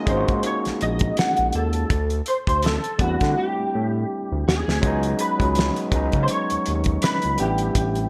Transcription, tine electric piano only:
0.00 0.06 G#3 loud
0.00 0.07 A#3 medium
0.00 0.08 C#4 medium
0.00 0.09 D#4 medium
0.00 0.17 F#4 loud
0.00 1.92 G#4 medium
0.06 1.24 G#3 medium
0.06 1.25 A#3 medium
0.06 1.25 C#4 medium
0.06 1.26 D#4 medium
0.11 0.16 F4 medium
0.17 1.30 F#4 medium
2.98 4.17 G3 medium
2.98 4.18 A3 medium
2.98 4.18 C4 medium
2.98 4.19 D4 medium
3.03 4.19 E4 medium
4.82 5.27 F#3 loud
4.82 5.27 G#3 medium
4.82 5.28 B3 medium
4.82 5.29 C#4 medium
4.86 5.29 D#4 loud
5.38 5.82 F#3 medium
5.38 5.83 G#3 medium
5.38 5.83 B3 medium
5.38 5.84 C#4 medium
5.43 5.85 F#4 medium
5.91 7.10 F#3 medium
5.91 7.10 G#3 medium
5.91 7.11 B3 medium
5.91 7.11 C#4 medium
5.96 7.12 D#4 medium
7.37 8.09 G3 medium
7.37 8.09 A3 medium
7.37 8.09 B3 medium
7.37 8.09 D4 medium
7.42 8.09 E4 medium

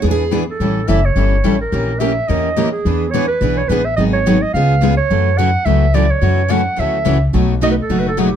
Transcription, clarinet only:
0.00 0.20 C#5 medium
0.50 0.90 A4 medium
0.88 1.07 E5 medium
1.05 1.60 C#5 medium
1.61 2.01 A#4 medium
1.99 2.30 E5 loud
2.28 2.71 D#5 medium
2.72 3.12 G#4 medium
3.11 3.27 C#5 medium
3.27 3.59 B4 medium
3.57 3.70 C#5 medium
3.68 3.87 B4 medium
3.85 3.96 E5 medium
3.96 4.04 D#5 medium
4.13 4.44 C#5 medium
4.42 4.53 D#5 medium
4.53 4.95 F5 medium
4.97 5.39 C#5 medium
5.38 5.67 F#5 loud
5.65 5.96 E5 medium
5.94 6.12 D5 medium
6.11 6.52 C#5 medium
6.51 6.81 F#5 loud
6.80 7.23 E5 medium
7.63 7.67 D#5 loud
7.72 7.76 B4 medium
7.82 8.01 A4 medium
8.00 8.08 B4 medium
8.08 8.17 A4 medium
8.20 8.30 G#4 medium
8.29 8.36 G4 medium

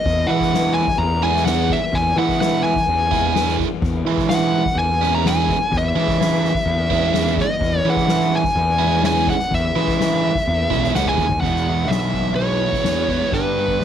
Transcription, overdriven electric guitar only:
0.30 0.52 E3 medium
0.30 0.53 G#3 medium
0.30 0.53 B3 medium
0.30 0.53 E4 loud
0.53 0.83 E3 medium
0.53 0.84 G#3 medium
0.53 0.84 B3 medium
0.53 0.84 E4 medium
1.22 1.46 E3 medium
1.22 1.46 G#3 medium
1.22 1.46 B3 medium
1.22 1.46 E4 loud
1.47 1.78 E3 medium
1.47 1.78 G#3 medium
1.47 1.78 B3 medium
1.47 1.78 E4 medium
2.19 2.40 E3 medium
2.19 2.41 G#3 medium
2.19 2.41 B3 medium
2.19 2.41 E4 loud
2.41 2.72 E3 medium
2.41 2.72 G#3 medium
2.41 2.73 B3 medium
2.41 2.73 E4 medium
3.11 3.33 E3 medium
3.11 3.34 G#3 medium
3.11 3.35 B3 medium
3.11 3.34 E4 loud
3.34 3.66 E3 medium
3.34 3.66 G#3 medium
3.34 3.67 B3 medium
3.34 3.66 E4 medium
4.07 4.29 E3 medium
4.07 4.30 G#3 medium
4.07 4.30 C#4 medium
4.07 4.30 E4 loud
4.30 4.61 E3 medium
4.30 4.62 G#3 medium
4.30 4.61 C#4 medium
4.30 4.61 E4 medium
5.01 5.23 E3 medium
5.01 5.24 G#3 medium
5.01 5.25 C#4 medium
5.01 5.25 E4 medium
5.24 5.55 E3 medium
5.24 5.56 G#3 medium
5.24 5.56 C#4 medium
5.24 5.56 E4 medium
5.96 6.18 E3 medium
5.96 6.18 G#3 medium
5.96 6.19 C#4 loud
5.96 6.19 E4 medium
6.19 6.50 E3 medium
6.19 6.50 G#3 medium
6.19 6.50 C#4 medium
6.19 6.51 E4 medium
6.90 7.12 E3 medium
6.90 7.13 G#3 medium
6.90 7.13 C#4 medium
6.90 7.13 E4 loud
7.14 7.45 E3 medium
7.14 7.45 G#3 medium
7.14 7.45 C#4 medium
7.14 7.45 E4 medium
7.85 8.08 E3 medium
7.85 8.08 G#3 medium
7.85 8.08 C#4 medium
7.85 8.08 E4 loud
8.09 8.40 E3 medium
8.09 8.40 G#3 medium
8.09 8.40 C#4 medium
8.09 8.40 E4 medium
8.79 9.01 E3 medium
8.79 9.02 G#3 medium
8.79 9.02 C#4 medium
8.79 9.02 E4 loud
9.03 9.34 E3 medium
9.03 9.34 G#3 medium
9.03 9.34 C#4 medium
9.03 9.34 E4 medium
9.76 9.98 E3 medium
9.76 9.98 G#3 medium
9.76 9.98 C#4 loud
9.76 9.99 E4 loud
9.99 10.30 E3 medium
9.99 10.30 G#3 medium
9.99 10.30 C#4 medium
9.99 10.30 E4 medium
10.70 10.94 E3 medium
10.70 10.94 G#3 medium
10.70 10.94 C#4 medium
10.70 10.94 E4 loud
10.95 11.25 E3 medium
10.95 11.25 G#3 medium
10.95 11.25 C#4 medium
10.95 11.26 E4 medium
11.43 11.89 E2 medium
11.43 11.90 B2 medium
11.43 11.69 E3 medium
11.43 11.69 G#3 medium
11.43 11.69 B3 medium
11.43 11.68 E4 medium
11.69 11.90 E3 medium
11.69 11.90 G#3 medium
11.69 11.92 B3 medium
11.69 11.92 E4 medium
11.91 12.39 E3 medium
11.91 12.39 G#3 medium
11.91 12.40 B3 medium
11.91 12.40 E4 medium
12.39 12.85 E2 medium
12.39 12.86 B2 medium
12.39 12.64 E3 medium
12.39 12.64 G#3 medium
12.39 12.62 B3 medium
12.39 12.62 E4 medium
12.63 12.84 E3 medium
12.63 12.86 G#3 medium
12.63 12.86 B3 medium
12.63 12.87 E4 medium
12.85 13.11 E3 medium
12.85 13.10 G#3 medium
12.85 13.09 B3 medium
12.85 13.08 E4 medium
13.09 13.32 E3 medium
13.09 13.32 G#3 medium
13.09 13.31 B3 medium
13.09 13.31 E4 medium
13.31 13.79 G2 medium
13.31 13.80 D3 medium
13.31 13.59 G3 medium
13.31 13.57 B3 medium
13.31 13.58 D4 medium
13.31 13.56 G4 medium
13.57 13.78 G3 medium
13.57 13.80 B3 medium
13.57 13.81 D4 medium
13.57 13.81 G4 medium
13.80 13.84 G3 medium
13.80 13.84 B3 medium

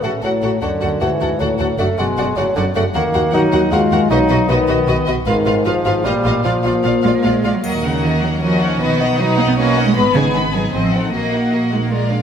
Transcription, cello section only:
0.03 0.11 A2 medium
0.23 0.31 A2 medium
0.42 0.50 A2 soft
0.62 0.70 D2 medium
0.82 0.90 D2 soft
1.01 1.09 D2 medium
1.21 1.29 D2 soft
1.40 1.48 D2 medium
1.60 1.67 D2 medium
1.79 1.87 F#2 medium
1.98 2.06 F#2 medium
2.17 2.25 F#2 medium
2.37 2.44 F#2 medium
2.57 2.64 F#2 medium
2.75 2.83 F#2 medium
2.95 3.02 D#2 medium
3.14 3.22 D#2 medium
3.33 3.41 D#2 medium
3.52 3.60 D#2 medium
3.72 3.79 D#2 medium
3.91 3.99 D#2 medium
4.10 4.18 B2 medium
4.29 4.37 B2 medium
4.49 4.57 B2 medium
4.68 4.76 B2 medium
4.87 4.95 B2 medium
5.07 5.15 B2 medium
5.26 5.34 G#2 medium
5.45 5.53 G#2 medium
5.65 5.73 G#2 medium
5.84 5.92 G#2 medium
6.04 6.12 A2 medium
6.25 6.32 A2 medium
6.45 6.53 A#2 medium
6.64 6.72 A#2 medium
6.84 6.92 A#2 medium
7.03 7.11 A#2 medium
7.03 7.08 G#3 medium
7.15 7.24 A#3 medium
7.24 7.32 A#2 medium
7.24 7.54 G#3 medium
7.44 7.52 A#2 soft
7.55 7.62 F#3 medium
7.63 7.71 F#3 medium
7.83 8.02 C#3 medium
8.02 8.22 D#3 medium
8.21 8.41 F#3 medium
8.41 8.79 F3 medium
8.80 9.18 D#3 medium
9.18 9.38 F#3 medium
9.37 9.41 A#3 medium
9.48 9.52 B3 medium
9.57 9.85 A#3 medium
9.86 9.90 G#3 medium
9.95 10.03 G#3 loud
10.14 10.22 C#3 medium
10.34 10.42 D#3 medium
10.53 10.61 F#3 medium
10.73 11.02 F3 medium
11.04 11.13 D#3 medium
11.12 11.70 A#3 medium
11.71 11.75 G#3 medium
11.82 11.91 A#3 medium
11.91 12.20 G#3 medium

